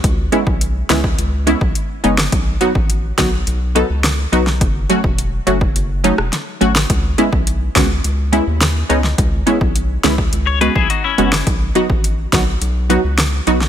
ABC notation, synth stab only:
X:1
M:4/4
L:1/8
Q:1/4=105
K:C#m
V:1 name="Synth stab"
z [G,B,CE] z [G,B,CE] z [G,B,CE] z [G,B,CD] | z [F,B,DF] z [F,B,DF] z [F,B,DA] z [F,B,DF] | z [F,A,CF] z [F,A,CF] z [F,A,CD] z [F,A,CF] | z [G,B,CE] z [G,B,CF] z [G,B,CE] z [G,B,CD] |
z [G,B,CE] z [G,B,CE] z [G,B,CF] z [G,B,CF] | z [F,B,DF] z [F,B,DF] z [F,B,DF] z [F,B,DF] |]